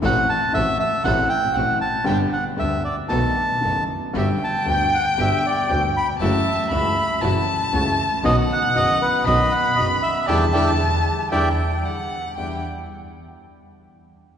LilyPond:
<<
  \new Staff \with { instrumentName = "Violin" } { \time 4/4 \key e \minor \tempo 4 = 117 r1 | r1 | g''1 | a''4 b''4 a''2 |
fis''2 b''2 | a''2 g''4 fis''4 | g''8 r2. r8 | }
  \new Staff \with { instrumentName = "Bandoneon" } { \time 4/4 \key e \minor fis''8 a''8 e''8 e''8 fis''8 g''8 fis''8 a''8 | g''8 fis''8 e''8 d''8 a''4. r8 | e''8 a''8 g''8 fis''8 e''8 d''8 g''8 b''8 | e''2 r2 |
dis''8 fis''8 dis''8 b'8 dis''8 fis''8 dis''8 e''8 | <d'' e'' g''>8 <d'' e'' g''>8 r4 <d'' e'' g''>8 r4. | r1 | }
  \new Staff \with { instrumentName = "String section" } { \time 4/4 \key e \minor <c' fis' a'>8 r8 <c' fis' a'>8 r8 <c' fis' a'>8 r8 <c' fis' a'>8 r8 | <b d' g'>8 r8 <b d' g'>8 r8 <b dis' a'>8 r8 <b dis' a'>8 r8 | <b fis' g'>8 r8 <b fis' g'>8 r8 <b fis' g'>8 r8 <b fis' g'>8 r8 | <a e' fis'>8 r8 <a e' fis'>8 r8 <a e' fis'>8 r8 <a e' fis'>8 r8 |
<b dis' fis'>8 r8 <b dis' fis'>8 r8 <b dis' fis'>8 r8 <b dis' fis'>8 r8 | <d' e' g'>8 <d' e' g'>8 r4 <d' e' g'>8 r4. | <d' e' g'>8 r2. r8 | }
  \new Staff \with { instrumentName = "Grand piano" } { \clef bass \time 4/4 \key e \minor <a,, a, fis a c' a'>8 r8 <a,, a, fis a c' a'>8 r8 <a,, a, fis a c' a'>8 r8 <a,, a, fis a c' a'>8 r8 | <g,, g, d g b g'>8 r8 <d, d g b g'>8 r8 <b,, b, dis a b fis'>8 r8 <fis,, fis, dis a b fis'>8 r8 | <g,, g, d g b fis'>8 r8 <d, d g b fis'>8 r8 <g,, g, d g b fis'>8 r8 <d, d g b fis'>8 r8 | <fis, e fis a cis' fis'>8 r8 <cis, cis e a cis' fis'>8 r8 <fis, e fis a cis' fis'>8 r8 <cis, cis e a cis' fis'>8 r8 |
<b,, b, dis fis b fis'>8 r8 <fis,, fis, dis fis b fis'>8 r8 <b,, b, dis fis b fis'>8 r8 <fis,, fis, dis fis b fis'>8 r8 | <d e g>8 <d e g>8 r4 <d e g>8 r4. | <e, g d' e'>8 r2. r8 | }
  \new Staff \with { instrumentName = "Double bass" } { \clef bass \time 4/4 \key e \minor a,,8 r8 a,,8 r8 a,,8 r8 a,,8 r8 | g,,8 r8 d,8 r8 b,,8 r8 fis,,8 r8 | g,,8 r8 d,8 r8 g,,8 r8 d,8 r8 | fis,,8 r8 cis,8 r8 fis,,8 r8 cis,8 r8 |
b,,8 r8 fis,,8 r8 b,,8 r8 fis,,8 r8 | e,8 e,8 r4 e,8 r4. | e,8 r2. r8 | }
>>